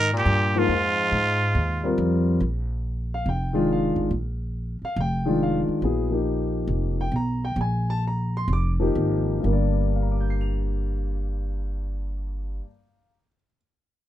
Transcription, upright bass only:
Already playing: G#2
0.26 G2
0.69 F2
1.12 G#2
1.55 D#2
1.98 F2
2.40 A#1
3.26 F1
3.96 G#1
4.11 A#1
4.82 muted upright bass stroke
4.96 F1
5.68 muted upright bass stroke
5.82 A#1
6.67 F1
7.12 B1
7.56 A#1
8.48 F1
8.95 G#1
9.44 G1

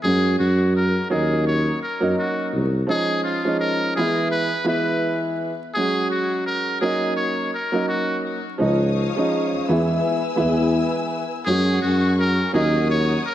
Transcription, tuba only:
0.04 F#2
0.40 F#2
1.11 D#2
2.02 F#2
2.54 C2
8.61 C#2
9.52 E2
9.68 E2
10.40 E2
11.47 F#2
11.82 F#2
12.54 D#2

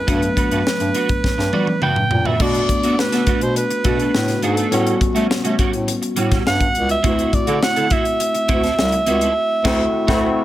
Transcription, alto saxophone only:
Already playing: B4
1.83 G5
2.26 E5
2.41 D5
2.99 B4
3.43 C5
3.57 B4
4.44 A4
6.48 F#5
6.91 E5
7.34 D5
7.63 F#5
7.93 E5

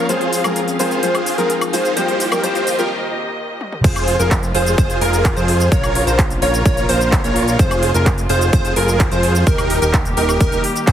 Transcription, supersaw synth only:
0.09 F4 G#4 C5
0.44 F4 G#4 A#4
0.79 F4 G#4 C5
1.03 F4 G#4 C5
1.38 F4 G#4 A#4
1.73 F4 G#4 C5
1.97 F4 G4 C5
2.32 F4 G4 A#4
2.43 F4 G4 C5
2.79 F4 G4 A#4
3.84 F4 G#4 C5
4.19 F4 G#4 A#4
4.55 F4 G#4 C5
4.78 F4 G#4 C5
5.01 F4 G#4 A#4
5.37 F4 G#4 C5
5.72 F4 A#4 C#5
6.07 F4 A#4 C5
6.42 F4 A#4 C#5
6.89 F4 A#4 C5
7.24 F4 A#4 C#5
7.59 F4 G#4 C5
7.94 F4 G#4 A#4
8.29 F4 G#4 C5
8.53 F4
8.76 F4 G#4 A#4
9.11 F4 G#4 C5
9.47 D#4 G4 A#4
9.82 D#4 G4 A#4
10.17 D#4 G4 A#4
10.40 D#4 G4 A#4
10.87 D#4 G4 C5

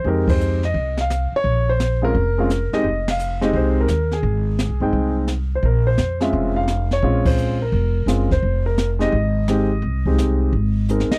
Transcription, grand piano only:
0.05 G#3 C4 D#4 G4 A#4
0.30 C5
0.65 D#5
1.01 F5
1.36 C#5
1.69 C5
2.02 G#3 C4 C#4 F4 A#4
2.38 G#3 C4 C#4 F4
2.73 G#3 C4 D#4 G4 D#5
3.11 F5
3.41 G#3 C4 D#4 G4
3.45 D#5
3.57 C5
3.81 A#4
4.13 G#4
4.81 G#3 C4 D#4 G5
5.55 C5
5.65 A#4
5.87 C5
6.21 G#3 C4 C#4 F4 E5
6.56 F5
6.93 C#5
7.03 G#3 C4 C#4 F4
7.26 C5
7.62 A#4
8.07 G#3 C4 C#4 F4
8.32 C5
8.66 A#4
8.99 G#3 C4 D#4 G4 D#5
9.48 G#3 C4 D#4 G4
10.06 G#3 C4 D#4 G4
10.90 G#3 C4 D#4 A#4
11.11 D#5

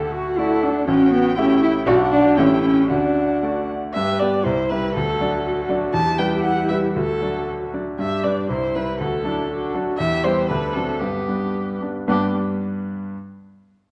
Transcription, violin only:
Already playing: F#5
0.88 G5
1.87 F#5
2.37 G5
2.90 F#5
3.94 E5
4.19 D5
4.44 C5
4.69 B4
4.95 A4
5.93 A5
6.18 G5
6.43 F#5
6.69 E5
6.95 A4
7.99 E5
8.23 D5
8.50 C5
8.75 B4
9.00 A4
9.98 E5
10.24 C5
10.48 B4
10.73 A4
10.99 G4
12.09 G4

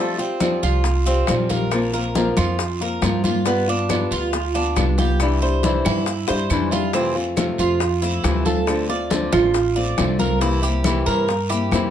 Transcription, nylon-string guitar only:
Already playing: F3 G3 C4
0.00 F4
0.18 G3 C4 F4
0.40 F3 G3 C4 F4
0.84 muted nylon-string guitar stroke
1.06 G3 C4 F4
1.28 F3 G3 C4 F4
1.50 G3 C4 F4
1.72 F3 A#3 C4 F4
1.94 A#3 C4 F4
2.15 F3 A#3 C4 F4
2.59 muted nylon-string guitar stroke
2.81 A#3 C4 F4
3.02 F3 A#3 C4 F4
3.24 A#3 C4 F4
3.45 G3 B3 F4
3.68 B3 F4
3.89 G3 B3 F4
4.33 muted nylon-string guitar stroke
4.55 B3 F4
4.77 G3 B3 F4
4.99 B3 F4
5.20 C3 E3 G3 D4 E4
5.42 G3 D4 E4
5.63 C3 E3 G3 D4 E4
6.07 muted nylon-string guitar stroke
6.28 G3 D4 E4
6.50 C3 E3 G3 D4 E4
6.71 G3 D4 E4
6.93 C3 E3 A3 C4 F4
7.15 A3 C4 F4
7.36 C3 A3 C4 F4
7.81 muted nylon-string guitar stroke
8.02 A3 C4 F4
8.24 C3 E3 A3 C4 F4
8.46 A3 C4 F4
8.67 D3 A3 C4 F4
8.89 A3 C4 F4
9.10 D3 A3 C4 F4
9.54 muted nylon-string guitar stroke
9.76 A3 C4 F4
9.97 D3 A3 C4 F4
10.19 A3 C4 F4
10.41 C3 E3 A#3 C4 E4
10.62 A#3 C4 E4
10.85 C3 E3 A#3 C4 E4
11.28 muted nylon-string guitar stroke
11.50 A#3 C4 E4
11.72 C3 E3 A#3 C4 E4

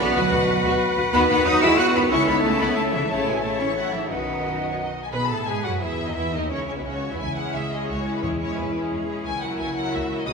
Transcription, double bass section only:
0.15 D2
0.31 D2
0.48 D2
0.64 D2
0.97 D2
1.13 D#2
1.29 D#2
1.45 D#2
1.62 D#2
1.95 D#2
2.11 C#2
2.28 C#2
2.44 C#2
2.61 C#2
2.94 C#2
3.10 A1
4.11 B1
5.13 B2
5.30 A2
5.48 G#2
5.65 F#2
5.83 E2
6.09 D#2
6.18 E2
6.35 D#2
6.52 C#2
6.69 C#2
6.77 B1
6.86 C#2
7.12 E2
7.21 C#2
7.55 C#2
7.89 C#2
8.23 E2
8.57 E2
8.91 E2
9.25 C#2
9.58 C#2
9.93 C#2
10.27 B1

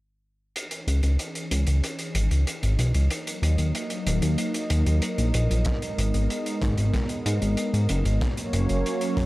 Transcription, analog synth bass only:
0.87 C#2
1.03 C#2
1.51 C#2
1.67 C#2
2.15 G#1
2.31 C#2
2.63 G#1
2.79 B1
2.95 C#2
3.42 D#2
3.58 D#2
4.06 D#1
4.22 D#2
4.70 D#2
4.86 D#2
5.18 A#1
5.34 A#1
5.50 A#1
5.98 G#1
6.14 G#1
6.62 G#1
6.78 G#1
7.26 G#2
7.42 G#1
7.73 G#2
7.89 F#1
8.05 G#1
8.53 F#1
8.70 F#1
9.17 F#2

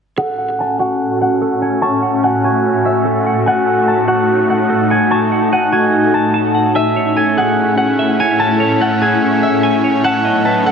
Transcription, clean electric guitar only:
0.18 A4
0.38 F#5
0.59 G#5
0.79 F#4
1.42 A4
1.62 F#5
1.82 C#6
2.03 F#5
2.23 G#5
2.44 F#4
3.05 A4
3.26 F#5
3.46 G#5
3.67 F#5
4.08 F#4
4.70 A4
4.90 F#5
5.11 C#6
5.32 F#5
5.53 G#5
5.73 F#4
6.34 A5
6.55 F#5
6.75 G#5
6.96 C#5
7.17 A4
7.37 G#4
7.99 E5
8.20 C#5
8.60 C#5
8.81 A4
9.02 G#4
9.63 G#5
9.84 C#5
10.05 A5
10.25 D#5
10.46 B4
10.66 A4

